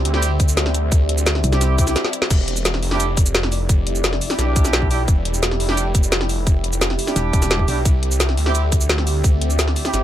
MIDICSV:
0, 0, Header, 1, 7, 480
1, 0, Start_track
1, 0, Tempo, 346821
1, 1271, Time_signature, 4, 2, 24, 8
1, 13890, End_track
2, 0, Start_track
2, 0, Title_t, "Ambient pad"
2, 0, Program_c, 0, 92
2, 0, Note_on_c, 0, 60, 81
2, 0, Note_on_c, 0, 67, 76
2, 0, Note_on_c, 0, 74, 89
2, 0, Note_on_c, 0, 76, 88
2, 3135, Note_off_c, 0, 60, 0
2, 3135, Note_off_c, 0, 67, 0
2, 3135, Note_off_c, 0, 74, 0
2, 3136, Note_off_c, 0, 76, 0
2, 3190, Note_on_c, 0, 74, 89
2, 3191, Note_on_c, 0, 64, 83
2, 3191, Note_on_c, 0, 67, 76
2, 6992, Note_off_c, 0, 74, 0
2, 7031, Note_on_c, 0, 76, 91
2, 10815, Note_off_c, 0, 64, 0
2, 10870, Note_on_c, 0, 74, 77
2, 10871, Note_on_c, 0, 60, 84
2, 13890, Note_off_c, 0, 60, 0
2, 13890, Note_off_c, 0, 67, 0
2, 13890, Note_off_c, 0, 74, 0
2, 13890, Note_off_c, 0, 76, 0
2, 13890, End_track
3, 0, Start_track
3, 0, Title_t, "Brass ensemble"
3, 0, Program_c, 1, 61
3, 190, Note_on_c, 1, 64, 98
3, 191, Note_on_c, 1, 60, 105
3, 191, Note_on_c, 1, 67, 119
3, 398, Note_off_c, 1, 64, 0
3, 399, Note_off_c, 1, 60, 0
3, 399, Note_off_c, 1, 67, 0
3, 2110, Note_on_c, 1, 60, 85
3, 2110, Note_on_c, 1, 67, 97
3, 2111, Note_on_c, 1, 64, 83
3, 2446, Note_off_c, 1, 60, 0
3, 2446, Note_off_c, 1, 67, 0
3, 2447, Note_off_c, 1, 64, 0
3, 2471, Note_on_c, 1, 60, 90
3, 2471, Note_on_c, 1, 64, 89
3, 2471, Note_on_c, 1, 67, 104
3, 2562, Note_off_c, 1, 60, 0
3, 2562, Note_off_c, 1, 64, 0
3, 2562, Note_off_c, 1, 67, 0
3, 2591, Note_on_c, 1, 60, 79
3, 2591, Note_on_c, 1, 64, 70
3, 2591, Note_on_c, 1, 67, 88
3, 2799, Note_off_c, 1, 60, 0
3, 2799, Note_off_c, 1, 64, 0
3, 2799, Note_off_c, 1, 67, 0
3, 4031, Note_on_c, 1, 62, 103
3, 4031, Note_on_c, 1, 64, 94
3, 4031, Note_on_c, 1, 67, 111
3, 4238, Note_off_c, 1, 62, 0
3, 4238, Note_off_c, 1, 64, 0
3, 4239, Note_off_c, 1, 67, 0
3, 5951, Note_on_c, 1, 62, 88
3, 5951, Note_on_c, 1, 64, 84
3, 5951, Note_on_c, 1, 67, 98
3, 6762, Note_off_c, 1, 62, 0
3, 6762, Note_off_c, 1, 64, 0
3, 6762, Note_off_c, 1, 67, 0
3, 6791, Note_on_c, 1, 62, 95
3, 6791, Note_on_c, 1, 64, 87
3, 6791, Note_on_c, 1, 67, 105
3, 6921, Note_off_c, 1, 62, 0
3, 6921, Note_off_c, 1, 64, 0
3, 6921, Note_off_c, 1, 67, 0
3, 7871, Note_on_c, 1, 62, 102
3, 7871, Note_on_c, 1, 64, 94
3, 7871, Note_on_c, 1, 67, 116
3, 8079, Note_off_c, 1, 62, 0
3, 8079, Note_off_c, 1, 64, 0
3, 8079, Note_off_c, 1, 67, 0
3, 9791, Note_on_c, 1, 62, 90
3, 9791, Note_on_c, 1, 64, 81
3, 9791, Note_on_c, 1, 67, 102
3, 10602, Note_off_c, 1, 62, 0
3, 10602, Note_off_c, 1, 64, 0
3, 10602, Note_off_c, 1, 67, 0
3, 10631, Note_on_c, 1, 62, 99
3, 10631, Note_on_c, 1, 64, 88
3, 10631, Note_on_c, 1, 67, 104
3, 10761, Note_off_c, 1, 62, 0
3, 10761, Note_off_c, 1, 64, 0
3, 10761, Note_off_c, 1, 67, 0
3, 11711, Note_on_c, 1, 60, 105
3, 11711, Note_on_c, 1, 64, 93
3, 11711, Note_on_c, 1, 67, 115
3, 11919, Note_off_c, 1, 60, 0
3, 11919, Note_off_c, 1, 64, 0
3, 11919, Note_off_c, 1, 67, 0
3, 13630, Note_on_c, 1, 64, 86
3, 13631, Note_on_c, 1, 60, 90
3, 13631, Note_on_c, 1, 67, 103
3, 13890, Note_off_c, 1, 60, 0
3, 13890, Note_off_c, 1, 64, 0
3, 13890, Note_off_c, 1, 67, 0
3, 13890, End_track
4, 0, Start_track
4, 0, Title_t, "Detuned saw bass"
4, 0, Program_c, 2, 39
4, 70, Note_on_c, 2, 38, 97
4, 1971, Note_off_c, 2, 38, 0
4, 3190, Note_on_c, 2, 28, 98
4, 3891, Note_off_c, 2, 28, 0
4, 3911, Note_on_c, 2, 29, 95
4, 5812, Note_off_c, 2, 29, 0
4, 6070, Note_on_c, 2, 35, 100
4, 7011, Note_off_c, 2, 35, 0
4, 7031, Note_on_c, 2, 28, 97
4, 7732, Note_off_c, 2, 28, 0
4, 7751, Note_on_c, 2, 29, 100
4, 9651, Note_off_c, 2, 29, 0
4, 10630, Note_on_c, 2, 35, 97
4, 10851, Note_off_c, 2, 35, 0
4, 10870, Note_on_c, 2, 36, 102
4, 11571, Note_off_c, 2, 36, 0
4, 11591, Note_on_c, 2, 38, 96
4, 13491, Note_off_c, 2, 38, 0
4, 13750, Note_on_c, 2, 31, 96
4, 13890, Note_off_c, 2, 31, 0
4, 13890, End_track
5, 0, Start_track
5, 0, Title_t, "Wobble bass"
5, 0, Program_c, 3, 39
5, 1991, Note_on_c, 3, 36, 98
5, 2711, Note_off_c, 3, 36, 0
5, 9910, Note_on_c, 3, 28, 95
5, 10131, Note_off_c, 3, 28, 0
5, 10150, Note_on_c, 3, 28, 97
5, 10611, Note_off_c, 3, 28, 0
5, 13890, End_track
6, 0, Start_track
6, 0, Title_t, "Swell"
6, 0, Program_c, 4, 103
6, 2231, Note_on_c, 4, 60, 60
6, 3191, Note_off_c, 4, 60, 0
6, 13890, End_track
7, 0, Start_track
7, 0, Title_t, "Drums"
7, 71, Note_on_c, 9, 42, 98
7, 191, Note_on_c, 9, 40, 47
7, 209, Note_off_c, 9, 42, 0
7, 311, Note_on_c, 9, 42, 85
7, 311, Note_on_c, 9, 82, 52
7, 329, Note_off_c, 9, 40, 0
7, 450, Note_off_c, 9, 42, 0
7, 450, Note_off_c, 9, 82, 0
7, 550, Note_on_c, 9, 36, 104
7, 551, Note_on_c, 9, 42, 96
7, 551, Note_on_c, 9, 82, 53
7, 671, Note_off_c, 9, 82, 0
7, 671, Note_on_c, 9, 82, 61
7, 689, Note_off_c, 9, 36, 0
7, 689, Note_off_c, 9, 42, 0
7, 791, Note_off_c, 9, 82, 0
7, 791, Note_on_c, 9, 38, 114
7, 791, Note_on_c, 9, 42, 86
7, 791, Note_on_c, 9, 82, 29
7, 911, Note_on_c, 9, 40, 45
7, 929, Note_off_c, 9, 38, 0
7, 929, Note_off_c, 9, 42, 0
7, 929, Note_off_c, 9, 82, 0
7, 1031, Note_on_c, 9, 42, 94
7, 1031, Note_on_c, 9, 82, 29
7, 1049, Note_off_c, 9, 40, 0
7, 1169, Note_off_c, 9, 42, 0
7, 1169, Note_off_c, 9, 82, 0
7, 1270, Note_on_c, 9, 36, 113
7, 1271, Note_on_c, 9, 42, 84
7, 1271, Note_on_c, 9, 82, 52
7, 1409, Note_off_c, 9, 36, 0
7, 1409, Note_off_c, 9, 42, 0
7, 1409, Note_off_c, 9, 82, 0
7, 1510, Note_on_c, 9, 42, 97
7, 1631, Note_on_c, 9, 82, 61
7, 1649, Note_off_c, 9, 42, 0
7, 1750, Note_off_c, 9, 82, 0
7, 1750, Note_on_c, 9, 38, 122
7, 1750, Note_on_c, 9, 42, 86
7, 1750, Note_on_c, 9, 82, 52
7, 1871, Note_on_c, 9, 40, 37
7, 1889, Note_off_c, 9, 38, 0
7, 1889, Note_off_c, 9, 42, 0
7, 1889, Note_off_c, 9, 82, 0
7, 1991, Note_on_c, 9, 42, 98
7, 1991, Note_on_c, 9, 82, 31
7, 2009, Note_off_c, 9, 40, 0
7, 2111, Note_off_c, 9, 82, 0
7, 2111, Note_on_c, 9, 40, 49
7, 2111, Note_on_c, 9, 82, 29
7, 2129, Note_off_c, 9, 42, 0
7, 2230, Note_off_c, 9, 40, 0
7, 2230, Note_off_c, 9, 82, 0
7, 2230, Note_on_c, 9, 40, 35
7, 2230, Note_on_c, 9, 42, 85
7, 2230, Note_on_c, 9, 82, 52
7, 2369, Note_off_c, 9, 40, 0
7, 2369, Note_off_c, 9, 42, 0
7, 2369, Note_off_c, 9, 82, 0
7, 2470, Note_on_c, 9, 36, 106
7, 2470, Note_on_c, 9, 42, 101
7, 2470, Note_on_c, 9, 82, 54
7, 2590, Note_off_c, 9, 82, 0
7, 2590, Note_on_c, 9, 40, 36
7, 2590, Note_on_c, 9, 82, 63
7, 2609, Note_off_c, 9, 36, 0
7, 2609, Note_off_c, 9, 42, 0
7, 2711, Note_off_c, 9, 82, 0
7, 2711, Note_on_c, 9, 38, 66
7, 2711, Note_on_c, 9, 42, 87
7, 2711, Note_on_c, 9, 82, 30
7, 2729, Note_off_c, 9, 40, 0
7, 2830, Note_off_c, 9, 38, 0
7, 2830, Note_on_c, 9, 38, 62
7, 2849, Note_off_c, 9, 42, 0
7, 2849, Note_off_c, 9, 82, 0
7, 2950, Note_on_c, 9, 42, 100
7, 2950, Note_on_c, 9, 82, 29
7, 2969, Note_off_c, 9, 38, 0
7, 3070, Note_on_c, 9, 38, 89
7, 3089, Note_off_c, 9, 42, 0
7, 3089, Note_off_c, 9, 82, 0
7, 3190, Note_on_c, 9, 36, 123
7, 3190, Note_on_c, 9, 42, 83
7, 3190, Note_on_c, 9, 49, 76
7, 3190, Note_on_c, 9, 82, 49
7, 3209, Note_off_c, 9, 38, 0
7, 3329, Note_off_c, 9, 36, 0
7, 3329, Note_off_c, 9, 42, 0
7, 3329, Note_off_c, 9, 49, 0
7, 3329, Note_off_c, 9, 82, 0
7, 3430, Note_on_c, 9, 42, 94
7, 3550, Note_on_c, 9, 82, 60
7, 3569, Note_off_c, 9, 42, 0
7, 3671, Note_off_c, 9, 82, 0
7, 3671, Note_on_c, 9, 38, 122
7, 3671, Note_on_c, 9, 42, 88
7, 3671, Note_on_c, 9, 82, 52
7, 3790, Note_on_c, 9, 40, 38
7, 3809, Note_off_c, 9, 38, 0
7, 3809, Note_off_c, 9, 42, 0
7, 3809, Note_off_c, 9, 82, 0
7, 3910, Note_on_c, 9, 46, 75
7, 3929, Note_off_c, 9, 40, 0
7, 4030, Note_on_c, 9, 40, 49
7, 4049, Note_off_c, 9, 46, 0
7, 4150, Note_on_c, 9, 42, 82
7, 4150, Note_on_c, 9, 82, 50
7, 4169, Note_off_c, 9, 40, 0
7, 4289, Note_off_c, 9, 42, 0
7, 4289, Note_off_c, 9, 82, 0
7, 4390, Note_on_c, 9, 36, 106
7, 4391, Note_on_c, 9, 42, 101
7, 4391, Note_on_c, 9, 82, 51
7, 4511, Note_off_c, 9, 82, 0
7, 4511, Note_on_c, 9, 82, 62
7, 4529, Note_off_c, 9, 36, 0
7, 4529, Note_off_c, 9, 42, 0
7, 4631, Note_off_c, 9, 82, 0
7, 4631, Note_on_c, 9, 38, 125
7, 4631, Note_on_c, 9, 42, 86
7, 4631, Note_on_c, 9, 82, 28
7, 4751, Note_on_c, 9, 40, 49
7, 4769, Note_off_c, 9, 38, 0
7, 4769, Note_off_c, 9, 42, 0
7, 4769, Note_off_c, 9, 82, 0
7, 4870, Note_on_c, 9, 46, 77
7, 4870, Note_on_c, 9, 82, 27
7, 4889, Note_off_c, 9, 40, 0
7, 5009, Note_off_c, 9, 46, 0
7, 5009, Note_off_c, 9, 82, 0
7, 5111, Note_on_c, 9, 36, 127
7, 5111, Note_on_c, 9, 42, 80
7, 5111, Note_on_c, 9, 82, 48
7, 5249, Note_off_c, 9, 36, 0
7, 5249, Note_off_c, 9, 42, 0
7, 5249, Note_off_c, 9, 82, 0
7, 5351, Note_on_c, 9, 42, 92
7, 5471, Note_on_c, 9, 82, 58
7, 5489, Note_off_c, 9, 42, 0
7, 5591, Note_off_c, 9, 82, 0
7, 5591, Note_on_c, 9, 38, 127
7, 5591, Note_on_c, 9, 42, 84
7, 5591, Note_on_c, 9, 82, 51
7, 5711, Note_on_c, 9, 40, 39
7, 5729, Note_off_c, 9, 38, 0
7, 5729, Note_off_c, 9, 42, 0
7, 5729, Note_off_c, 9, 82, 0
7, 5831, Note_on_c, 9, 46, 78
7, 5831, Note_on_c, 9, 82, 29
7, 5850, Note_off_c, 9, 40, 0
7, 5951, Note_off_c, 9, 82, 0
7, 5951, Note_on_c, 9, 40, 51
7, 5951, Note_on_c, 9, 82, 27
7, 5969, Note_off_c, 9, 46, 0
7, 6071, Note_off_c, 9, 40, 0
7, 6071, Note_off_c, 9, 82, 0
7, 6071, Note_on_c, 9, 40, 35
7, 6071, Note_on_c, 9, 42, 81
7, 6071, Note_on_c, 9, 82, 48
7, 6209, Note_off_c, 9, 40, 0
7, 6209, Note_off_c, 9, 42, 0
7, 6209, Note_off_c, 9, 82, 0
7, 6311, Note_on_c, 9, 36, 108
7, 6311, Note_on_c, 9, 42, 98
7, 6311, Note_on_c, 9, 82, 51
7, 6431, Note_off_c, 9, 82, 0
7, 6431, Note_on_c, 9, 40, 38
7, 6431, Note_on_c, 9, 82, 59
7, 6449, Note_off_c, 9, 36, 0
7, 6449, Note_off_c, 9, 42, 0
7, 6551, Note_off_c, 9, 82, 0
7, 6551, Note_on_c, 9, 38, 127
7, 6551, Note_on_c, 9, 42, 86
7, 6551, Note_on_c, 9, 82, 28
7, 6569, Note_off_c, 9, 40, 0
7, 6671, Note_on_c, 9, 36, 63
7, 6689, Note_off_c, 9, 38, 0
7, 6689, Note_off_c, 9, 42, 0
7, 6689, Note_off_c, 9, 82, 0
7, 6791, Note_on_c, 9, 46, 72
7, 6791, Note_on_c, 9, 82, 26
7, 6809, Note_off_c, 9, 36, 0
7, 6929, Note_off_c, 9, 46, 0
7, 6929, Note_off_c, 9, 82, 0
7, 7031, Note_on_c, 9, 36, 126
7, 7031, Note_on_c, 9, 42, 78
7, 7031, Note_on_c, 9, 82, 47
7, 7169, Note_off_c, 9, 36, 0
7, 7169, Note_off_c, 9, 42, 0
7, 7169, Note_off_c, 9, 82, 0
7, 7271, Note_on_c, 9, 42, 88
7, 7391, Note_on_c, 9, 82, 56
7, 7409, Note_off_c, 9, 42, 0
7, 7511, Note_off_c, 9, 82, 0
7, 7511, Note_on_c, 9, 38, 127
7, 7511, Note_on_c, 9, 42, 81
7, 7511, Note_on_c, 9, 82, 48
7, 7631, Note_on_c, 9, 40, 38
7, 7649, Note_off_c, 9, 38, 0
7, 7649, Note_off_c, 9, 42, 0
7, 7649, Note_off_c, 9, 82, 0
7, 7751, Note_on_c, 9, 46, 82
7, 7770, Note_off_c, 9, 40, 0
7, 7871, Note_on_c, 9, 40, 51
7, 7889, Note_off_c, 9, 46, 0
7, 7991, Note_on_c, 9, 42, 77
7, 7991, Note_on_c, 9, 82, 48
7, 8009, Note_off_c, 9, 40, 0
7, 8129, Note_off_c, 9, 42, 0
7, 8129, Note_off_c, 9, 82, 0
7, 8231, Note_on_c, 9, 36, 115
7, 8231, Note_on_c, 9, 42, 98
7, 8231, Note_on_c, 9, 82, 51
7, 8350, Note_off_c, 9, 82, 0
7, 8350, Note_on_c, 9, 82, 55
7, 8369, Note_off_c, 9, 36, 0
7, 8369, Note_off_c, 9, 42, 0
7, 8470, Note_off_c, 9, 82, 0
7, 8470, Note_on_c, 9, 38, 127
7, 8470, Note_on_c, 9, 42, 84
7, 8470, Note_on_c, 9, 82, 29
7, 8591, Note_on_c, 9, 40, 48
7, 8609, Note_off_c, 9, 38, 0
7, 8609, Note_off_c, 9, 42, 0
7, 8609, Note_off_c, 9, 82, 0
7, 8711, Note_on_c, 9, 46, 79
7, 8711, Note_on_c, 9, 82, 26
7, 8729, Note_off_c, 9, 40, 0
7, 8849, Note_off_c, 9, 46, 0
7, 8849, Note_off_c, 9, 82, 0
7, 8950, Note_on_c, 9, 36, 122
7, 8950, Note_on_c, 9, 42, 76
7, 8950, Note_on_c, 9, 82, 48
7, 9089, Note_off_c, 9, 36, 0
7, 9089, Note_off_c, 9, 42, 0
7, 9089, Note_off_c, 9, 82, 0
7, 9190, Note_on_c, 9, 42, 91
7, 9310, Note_on_c, 9, 82, 59
7, 9329, Note_off_c, 9, 42, 0
7, 9431, Note_off_c, 9, 82, 0
7, 9431, Note_on_c, 9, 38, 127
7, 9431, Note_on_c, 9, 42, 79
7, 9431, Note_on_c, 9, 82, 51
7, 9551, Note_on_c, 9, 40, 36
7, 9569, Note_off_c, 9, 38, 0
7, 9569, Note_off_c, 9, 42, 0
7, 9569, Note_off_c, 9, 82, 0
7, 9671, Note_on_c, 9, 46, 85
7, 9671, Note_on_c, 9, 82, 28
7, 9689, Note_off_c, 9, 40, 0
7, 9791, Note_off_c, 9, 82, 0
7, 9791, Note_on_c, 9, 40, 47
7, 9791, Note_on_c, 9, 82, 27
7, 9809, Note_off_c, 9, 46, 0
7, 9911, Note_off_c, 9, 40, 0
7, 9911, Note_off_c, 9, 82, 0
7, 9911, Note_on_c, 9, 40, 34
7, 9911, Note_on_c, 9, 42, 78
7, 9911, Note_on_c, 9, 82, 50
7, 10049, Note_off_c, 9, 40, 0
7, 10049, Note_off_c, 9, 42, 0
7, 10049, Note_off_c, 9, 82, 0
7, 10150, Note_on_c, 9, 36, 111
7, 10151, Note_on_c, 9, 42, 89
7, 10151, Note_on_c, 9, 82, 49
7, 10271, Note_off_c, 9, 82, 0
7, 10271, Note_on_c, 9, 40, 35
7, 10271, Note_on_c, 9, 82, 58
7, 10289, Note_off_c, 9, 36, 0
7, 10289, Note_off_c, 9, 42, 0
7, 10390, Note_off_c, 9, 82, 0
7, 10390, Note_on_c, 9, 38, 127
7, 10390, Note_on_c, 9, 42, 80
7, 10390, Note_on_c, 9, 82, 29
7, 10409, Note_off_c, 9, 40, 0
7, 10510, Note_on_c, 9, 36, 62
7, 10529, Note_off_c, 9, 38, 0
7, 10529, Note_off_c, 9, 42, 0
7, 10529, Note_off_c, 9, 82, 0
7, 10631, Note_on_c, 9, 46, 80
7, 10631, Note_on_c, 9, 82, 26
7, 10649, Note_off_c, 9, 36, 0
7, 10769, Note_off_c, 9, 46, 0
7, 10769, Note_off_c, 9, 82, 0
7, 10870, Note_on_c, 9, 36, 119
7, 10870, Note_on_c, 9, 42, 79
7, 10870, Note_on_c, 9, 82, 50
7, 11009, Note_off_c, 9, 36, 0
7, 11009, Note_off_c, 9, 42, 0
7, 11009, Note_off_c, 9, 82, 0
7, 11110, Note_on_c, 9, 42, 89
7, 11230, Note_on_c, 9, 82, 62
7, 11249, Note_off_c, 9, 42, 0
7, 11350, Note_off_c, 9, 82, 0
7, 11350, Note_on_c, 9, 38, 127
7, 11350, Note_on_c, 9, 42, 80
7, 11350, Note_on_c, 9, 82, 52
7, 11470, Note_on_c, 9, 40, 34
7, 11489, Note_off_c, 9, 38, 0
7, 11489, Note_off_c, 9, 42, 0
7, 11489, Note_off_c, 9, 82, 0
7, 11590, Note_on_c, 9, 46, 85
7, 11609, Note_off_c, 9, 40, 0
7, 11711, Note_on_c, 9, 40, 47
7, 11729, Note_off_c, 9, 46, 0
7, 11830, Note_on_c, 9, 42, 79
7, 11830, Note_on_c, 9, 82, 53
7, 11849, Note_off_c, 9, 40, 0
7, 11969, Note_off_c, 9, 42, 0
7, 11969, Note_off_c, 9, 82, 0
7, 12070, Note_on_c, 9, 42, 94
7, 12070, Note_on_c, 9, 82, 52
7, 12071, Note_on_c, 9, 36, 108
7, 12190, Note_off_c, 9, 82, 0
7, 12190, Note_on_c, 9, 82, 60
7, 12209, Note_off_c, 9, 36, 0
7, 12209, Note_off_c, 9, 42, 0
7, 12311, Note_off_c, 9, 82, 0
7, 12311, Note_on_c, 9, 38, 127
7, 12311, Note_on_c, 9, 42, 80
7, 12311, Note_on_c, 9, 82, 29
7, 12431, Note_on_c, 9, 40, 43
7, 12449, Note_off_c, 9, 38, 0
7, 12449, Note_off_c, 9, 42, 0
7, 12449, Note_off_c, 9, 82, 0
7, 12550, Note_on_c, 9, 46, 83
7, 12550, Note_on_c, 9, 82, 28
7, 12569, Note_off_c, 9, 40, 0
7, 12689, Note_off_c, 9, 46, 0
7, 12689, Note_off_c, 9, 82, 0
7, 12790, Note_on_c, 9, 42, 82
7, 12790, Note_on_c, 9, 82, 52
7, 12791, Note_on_c, 9, 36, 116
7, 12929, Note_off_c, 9, 36, 0
7, 12929, Note_off_c, 9, 42, 0
7, 12929, Note_off_c, 9, 82, 0
7, 13030, Note_on_c, 9, 42, 90
7, 13150, Note_on_c, 9, 82, 63
7, 13169, Note_off_c, 9, 42, 0
7, 13271, Note_off_c, 9, 82, 0
7, 13271, Note_on_c, 9, 38, 121
7, 13271, Note_on_c, 9, 42, 81
7, 13271, Note_on_c, 9, 82, 55
7, 13391, Note_on_c, 9, 40, 36
7, 13409, Note_off_c, 9, 38, 0
7, 13409, Note_off_c, 9, 42, 0
7, 13409, Note_off_c, 9, 82, 0
7, 13511, Note_on_c, 9, 46, 86
7, 13511, Note_on_c, 9, 82, 30
7, 13529, Note_off_c, 9, 40, 0
7, 13631, Note_off_c, 9, 82, 0
7, 13631, Note_on_c, 9, 40, 47
7, 13631, Note_on_c, 9, 82, 28
7, 13649, Note_off_c, 9, 46, 0
7, 13751, Note_off_c, 9, 40, 0
7, 13751, Note_off_c, 9, 82, 0
7, 13751, Note_on_c, 9, 40, 33
7, 13751, Note_on_c, 9, 42, 80
7, 13751, Note_on_c, 9, 82, 54
7, 13889, Note_off_c, 9, 40, 0
7, 13889, Note_off_c, 9, 42, 0
7, 13889, Note_off_c, 9, 82, 0
7, 13890, End_track
0, 0, End_of_file